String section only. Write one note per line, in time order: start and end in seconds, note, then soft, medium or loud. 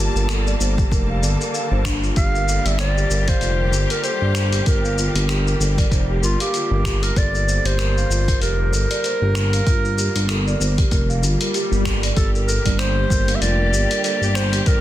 0.00 12.12 D3 medium
0.00 12.13 G3 medium
0.00 12.12 A#3 medium
0.00 2.16 A5 medium
2.17 7.16 G4 medium
12.17 14.81 D3 medium
12.17 14.81 G3 medium
12.17 14.81 A#3 medium
12.17 14.81 G4 medium